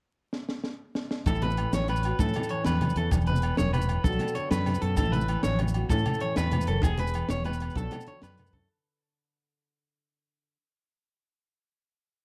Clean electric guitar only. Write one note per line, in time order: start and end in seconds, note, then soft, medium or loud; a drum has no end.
1.27 1.42 A4 medium
1.43 1.72 B4 medium
1.74 1.89 C#5 medium
1.90 2.19 B4 medium
2.20 2.49 A4 medium
2.50 2.65 C#5 medium
2.66 2.95 B4 medium
2.97 3.11 A4 medium
3.12 muted clean electric guitar stroke medium
3.27 3.57 B4 medium
3.58 3.73 C#5 medium
3.73 4.03 B4 medium
4.04 4.34 A4 medium
4.35 4.50 C#5 medium
4.51 4.81 B4 medium
4.82 4.96 A4 medium
4.97 5.12 A4 medium
5.12 5.42 B4 medium
5.44 5.59 C#5 medium
5.90 6.20 A4 medium
6.21 6.36 C#5 medium
6.37 6.66 B4 medium
6.68 6.83 A4 medium
6.83 6.98 G#4 medium
6.99 7.29 B4 medium
7.30 7.45 C#5 medium
7.45 7.75 B4 medium
7.77 8.06 A4 medium
8.08 8.22 C#5 medium
8.23 8.52 B4 medium
8.53 8.68 A4 medium